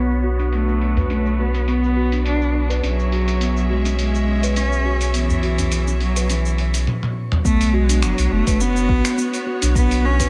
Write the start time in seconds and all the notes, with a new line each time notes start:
Already playing: B1 B3 F#4 C#5 C#6
0.11 shaker
0.24 F#4
0.39 D4, open hi-hat, shaker
0.52 A3 B4, open hi-hat, shaker
0.68 D4, shaker
0.81 D4, open hi-hat
0.96 B4, open hi-hat, udu, shaker
1.10 A3 C#4, open hi-hat, shaker
1.26 shaker
1.39 B3 F#4
1.55 open hi-hat, shaker
1.68 B3, open hi-hat, shaker
1.83 shaker
1.97 F#4
2.12 D4, open hi-hat, shaker
2.26 D4, open hi-hat, shaker
2.41 D4, shaker
2.54 D4
2.70 B4, open hi-hat, shaker
2.83 B1 F#3 C#4 G#4 C#5 E5, open hi-hat, shaker
2.99 shaker
3.12 F#4, open hi-hat
3.28 open hi-hat, shaker
3.41 B3, open hi-hat, shaker
3.57 shaker
3.70 G#3 F#4
3.85 C#4, open hi-hat, shaker
3.99 G#3, open hi-hat, shaker
4.14 C#4, shaker
4.28 C#4
4.43 B4, open hi-hat, shaker
4.56 C#4, open hi-hat, shaker
4.72 shaker
4.85 F#4
5.01 open hi-hat, shaker
5.14 E3 B3, open hi-hat, shaker
5.30 udu, shaker
5.43 F#4, open hi-hat
5.58 C#4, open hi-hat, udu, shaker
5.72 open hi-hat, shaker
5.87 C#4, shaker
6.00 F#3 C#4, open hi-hat
6.16 B4, open hi-hat, shaker
6.29 E3 C#4, open hi-hat, shaker
6.45 shaker
6.58 C#4, open hi-hat
6.74 open hi-hat, shaker
6.87 high tom
7.03 high tom
7.32 mid tom
7.45 B1 A3 B3 F#4 C#5, kick, shaker
7.61 open hi-hat, shaker
7.74 G#3 F#4
7.89 D4, open hi-hat, shaker
8.03 F#1 F#3, finger snap, shaker
8.18 B1 D4, open hi-hat, shaker
8.31 F#1 A3 D4
8.47 F#1 B4, kick, open hi-hat, shaker
8.60 B3 C#4, shaker
8.76 shaker
8.89 B1 F#4, kick
9.05 finger snap, open hi-hat, shaker
9.18 B3, shaker
9.34 open hi-hat, shaker
9.47 F#4
9.62 B1 D4, open hi-hat, shaker
9.75 B3, kick, shaker
9.91 D4, open hi-hat, shaker
10.04 C#4 D4
10.20 B4, kick, open hi-hat, shaker